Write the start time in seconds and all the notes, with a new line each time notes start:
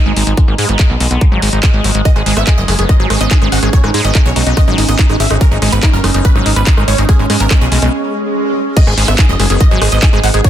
Already playing: G#3 D#4
0.06 G#1 G#3
0.16 G#1 G#3, open hi-hat
0.27 G#1 G#3, closed hi-hat
0.37 G#3, kick, closed hi-hat
0.48 G#1 A#3
0.58 G#2 G#3, open hi-hat
0.69 G#1 B3, closed hi-hat
0.79 D#4, kick, clap, closed hi-hat
0.90 B1 G#3
1.00 B1 G#3, open hi-hat
1.11 B1 B3, closed hi-hat
1.21 A#3, kick, closed hi-hat
1.32 G#1 F#3
1.42 G#1 G#3, open hi-hat
1.53 G#1 D#4, closed hi-hat
1.63 G#3, kick, clap, closed hi-hat
1.74 G#1 G#3
1.84 G#1 F#3, open hi-hat
1.95 G#1 G#3, closed hi-hat
2.05 G#3 C#4 D#5, kick, closed hi-hat
2.16 G#1 G#3 G#4, cross-stick
2.26 G#1 G#3 G#4, open hi-hat
2.37 G#1 B3 E5, cross-stick, closed hi-hat
2.47 D#4 G#4, kick, clap, closed hi-hat
2.58 F#1 G#3 D#5
2.68 F#1 G#3 G#4, cross-stick, open hi-hat
2.79 F#1 B3 G#4, closed hi-hat
2.89 A#3 D#5, kick, cross-stick, closed hi-hat
3.00 G#1 F#3 G#4
3.10 G#1 G#3 G#4, cross-stick, open hi-hat
3.21 G#1 B3 D#5, closed hi-hat
3.31 D#4 G#4, kick, clap, closed hi-hat
3.42 G#1 G#3 G#4, cross-stick
3.52 G#1 G#3 F#5, open hi-hat
3.63 G#1 G#3 G#4, cross-stick, closed hi-hat
3.73 G#3 C#5, kick, closed hi-hat
3.84 G#1 G#3 D#4, cross-stick
3.94 G#2 G#3 D#4, open hi-hat
4.05 G#1 B3 D#5, closed hi-hat
4.15 D#4, kick, cross-stick, clap, closed hi-hat
4.26 B1 G#3 C#5
4.36 B1 G#3 D#4, open hi-hat
4.47 B1 B3 D#4, closed hi-hat
4.57 A#3 D#5, kick, cross-stick, closed hi-hat
4.68 G#1 F#3 D#4
4.78 G#1 G#3 D#4, open hi-hat
4.89 G#1 B3 D#5, cross-stick, closed hi-hat
4.99 D#4, kick, clap, closed hi-hat
5.09 G#1 G#3 D#4, cross-stick
5.20 G#1 G#3 E5, open hi-hat
5.30 G#1 G#3 D#4, cross-stick, closed hi-hat
5.41 G#3 A#4, kick, closed hi-hat
5.51 G#1 G#3 D#4
5.62 G#1 G#3 D#4, cross-stick, open hi-hat
5.72 G#1 B3 B4, closed hi-hat
5.83 D#4, kick, cross-stick, clap, closed hi-hat
5.93 F#1 G#3 A#4
6.04 F#1 G#3 D#4, cross-stick, open hi-hat
6.14 F#1 B3 D#4, closed hi-hat
6.25 A#3 B4, kick, closed hi-hat
6.35 G#1 F#3 D#4, cross-stick
6.46 G#1 G#3 D#4, open hi-hat
6.56 G#1 B3 B4, cross-stick, closed hi-hat
6.67 D#4, kick, clap, closed hi-hat
6.77 G#1 G#3 D#4, cross-stick
6.88 G#1 G#3 C#5, open hi-hat
6.98 G#1 G#3 D#4, closed hi-hat
7.09 G#3 G#4, kick, cross-stick, closed hi-hat
7.19 G#1 G#3
7.30 G#2 G#3, cross-stick, open hi-hat
7.40 G#1 B3 A#4, closed hi-hat
7.51 G#3 D#4, kick, cross-stick, clap, closed hi-hat
7.61 B1 G#3 G#4
7.72 B1 G#3, open hi-hat
7.82 B1 G#3 B3, cross-stick, closed hi-hat
7.93 swell
8.77 G#3 D#4 D#5, kick, closed hi-hat, crash
8.87 G#1 G#3 G#4, cross-stick
8.98 G#1 G#3 G#4, open hi-hat
9.08 G#1 B3 E5, cross-stick, closed hi-hat
9.19 D#4 G#4, kick, clap, closed hi-hat
9.29 F#1 G#3 D#5
9.40 F#1 G#3 G#4, cross-stick, open hi-hat
9.50 F#1 B3 G#4, closed hi-hat
9.61 A#3 D#5, kick, cross-stick, closed hi-hat
9.71 G#1 F#3 G#4
9.82 G#1 G#3 G#4, cross-stick, open hi-hat
9.92 G#1 B3 D#5, closed hi-hat
10.03 D#4 G#4, kick, clap, closed hi-hat
10.13 G#1 G#3 G#4, cross-stick
10.23 G#1 G#3 F#5, open hi-hat
10.34 G#1 G#3 G#4, cross-stick, closed hi-hat
10.44 G#3 C#5, kick, closed hi-hat